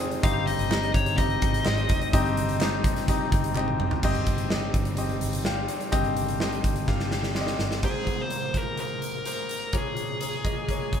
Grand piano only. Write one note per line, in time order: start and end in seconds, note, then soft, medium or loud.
0.00 0.23 C4 medium
0.00 0.25 F4 medium
0.00 0.23 G4 medium
0.00 0.25 G#4 medium
0.00 0.24 C5 medium
0.00 0.23 D#5 medium
0.00 0.25 F5 loud
0.00 0.45 G5 medium
0.00 0.24 G#5 medium
0.00 0.25 C6 medium
0.00 0.44 D#6 medium
0.23 0.90 G2 medium
0.23 0.59 C4 loud
0.23 0.58 D#4 medium
0.23 0.58 G4 medium
0.23 0.59 D#5 loud
0.70 1.06 C4 medium
0.70 1.06 D#4 medium
0.70 1.06 G4 medium
0.70 1.06 D#5 medium
1.17 1.53 C4 medium
1.17 1.53 D#4 medium
1.17 1.53 G4 medium
1.17 1.53 D#5 medium
1.65 2.00 C4 medium
1.65 2.01 D#4 medium
1.65 2.01 G4 medium
1.65 2.01 D#5 medium
2.13 2.81 G2 medium
2.13 2.49 C4 loud
2.13 2.49 D#4 loud
2.13 2.49 G4 loud
2.13 2.49 D#5 loud
2.60 2.96 C4 medium
2.60 2.96 D#4 medium
2.60 2.96 G4 medium
2.60 2.96 D#5 medium
3.09 3.44 C4 medium
3.09 3.44 D#4 medium
3.09 3.44 G4 medium
3.09 3.44 D#5 medium
3.56 3.91 C4 medium
3.56 3.91 D#4 medium
3.56 3.92 G4 medium
3.56 3.92 D#5 medium
4.04 4.71 G2 medium
4.04 4.39 C4 loud
4.04 4.39 G4 medium
4.04 4.39 D#5 loud
4.51 4.86 C4 medium
4.51 4.86 G4 medium
4.51 4.86 D#5 medium
4.98 5.34 C4 medium
4.98 5.34 G4 medium
4.98 5.34 D#5 medium
5.46 5.81 C4 medium
5.46 5.81 G4 medium
5.46 5.81 F5 medium
5.92 6.60 G2 medium
5.92 6.28 C4 loud
5.92 6.28 G4 loud
5.92 6.28 D#5 loud
6.40 6.76 C4 medium
6.40 6.76 G4 medium
6.40 6.76 D#5 medium
6.88 7.24 C4 medium
6.88 7.24 G4 medium
6.88 7.24 F5 medium
7.35 7.71 C4 medium
7.35 7.71 G4 medium
7.35 7.41 D5 medium
7.41 7.74 D#5 medium
7.83 9.70 G#1 soft
7.83 9.70 G#2 soft
7.83 8.18 A#3 medium
7.83 8.18 G#4 medium
7.83 8.19 C5 medium
8.31 8.49 A#3 medium
8.31 8.49 G#4 soft
8.31 8.49 C5 medium
8.54 8.72 A#3 soft
8.54 8.72 G#4 soft
8.54 8.72 C5 medium
8.79 9.14 A#3 medium
8.79 9.14 G#4 soft
8.79 9.14 C5 medium
9.26 9.61 A#3 medium
9.26 9.62 G#4 medium
9.26 9.62 C5 medium
9.73 11.00 A#1 soft
9.73 11.00 A#2 soft
9.73 10.09 A#3 medium
9.73 10.09 G#4 medium
9.73 10.09 C#5 medium
10.22 10.39 A#3 medium
10.22 10.39 G#4 soft
10.22 10.40 C#5 medium
10.45 10.63 A#3 medium
10.45 10.63 G#4 medium
10.45 10.63 D#5 medium
10.69 11.00 A#3 medium
10.69 11.00 G#4 medium
10.69 11.00 C#5 medium